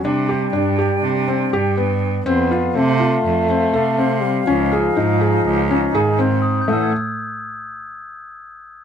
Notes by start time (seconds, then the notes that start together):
0.04 C3 G3 D4 D5 G5
0.29 G4
0.53 G2 D4
0.78 G4
1.03 C3
1.28 C4
1.53 G2 G4
1.77 B3
2.26 F2 B3 C4 A4 F5
2.51 F4
2.75 C3 A3 C4
3.00 F4
3.24 F2
3.50 C4
3.73 C3 A4
3.98 C4
4.21 G3
4.46 C#2 F3 C#4 D#4 D#5
4.71 G#4 F6
4.95 G#2 D#4
5.21 G#4
5.45 C#2
5.71 C#4
5.94 G#2 D#3 G#4
6.19 C4
6.42 D#6
6.61 G6
6.67 A2 E3 A3 C#4 A4 F#5
6.73 E6
6.83 G#6